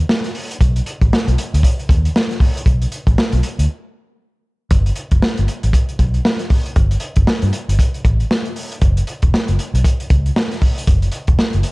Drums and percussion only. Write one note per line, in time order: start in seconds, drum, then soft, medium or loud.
0.09 snare loud
0.24 snare soft
0.24 closed hi-hat soft
0.35 open hi-hat medium
0.51 closed hi-hat soft
0.61 kick loud
0.61 closed hi-hat medium
0.76 closed hi-hat medium
0.86 closed hi-hat medium
1.01 kick medium
1.01 closed hi-hat soft
1.13 snare loud
1.28 closed hi-hat soft
1.38 closed hi-hat medium
1.54 closed hi-hat medium
1.63 kick medium
1.63 closed hi-hat loud
1.79 closed hi-hat soft
1.89 kick loud
1.89 closed hi-hat medium
2.05 closed hi-hat soft
2.16 snare loud
2.31 snare soft
2.31 closed hi-hat soft
2.40 kick medium
2.40 open hi-hat medium
2.57 closed hi-hat soft
2.66 kick loud
2.66 closed hi-hat medium
2.82 closed hi-hat medium
2.92 closed hi-hat medium
3.07 kick medium
3.07 closed hi-hat soft
3.18 snare loud
3.32 closed hi-hat soft
3.43 closed hi-hat medium
3.59 closed hi-hat medium
4.71 kick medium
4.71 closed hi-hat medium
4.86 closed hi-hat medium
4.96 closed hi-hat medium
5.11 kick medium
5.11 closed hi-hat soft
5.22 snare loud
5.37 closed hi-hat soft
5.48 closed hi-hat medium
5.63 closed hi-hat medium
5.73 kick loud
5.73 closed hi-hat loud
5.89 closed hi-hat soft
5.99 kick medium
5.99 closed hi-hat medium
6.14 closed hi-hat soft
6.25 snare loud
6.39 snare soft
6.39 closed hi-hat soft
6.50 kick medium
6.50 open hi-hat medium
6.66 closed hi-hat soft
6.76 kick loud
6.76 closed hi-hat medium
6.91 closed hi-hat medium
7.00 closed hi-hat medium
7.16 kick medium
7.16 closed hi-hat soft
7.27 snare loud
7.42 closed hi-hat medium
7.53 closed hi-hat medium
7.69 closed hi-hat medium
7.79 kick medium
7.79 closed hi-hat loud
7.94 closed hi-hat soft
8.05 kick medium
8.05 closed hi-hat medium
8.20 closed hi-hat soft
8.31 snare loud
8.45 closed hi-hat soft
8.56 open hi-hat medium
8.72 closed hi-hat medium
8.82 kick loud
8.82 closed hi-hat medium
8.97 closed hi-hat medium
9.07 closed hi-hat medium
9.22 kick medium
9.22 closed hi-hat soft
9.34 snare loud
9.48 closed hi-hat medium
9.59 closed hi-hat medium
9.75 closed hi-hat medium
9.84 kick medium
9.84 closed hi-hat loud
10.00 closed hi-hat soft
10.10 kick loud
10.10 closed hi-hat medium
10.26 closed hi-hat soft
10.36 snare loud
10.51 snare soft
10.51 closed hi-hat soft
10.62 kick medium
10.62 open hi-hat medium
10.78 closed hi-hat medium
10.87 kick loud
10.87 closed hi-hat medium
11.02 closed hi-hat medium
11.12 closed hi-hat medium
11.27 kick medium
11.27 closed hi-hat soft
11.39 snare loud
11.53 closed hi-hat soft
11.63 closed hi-hat medium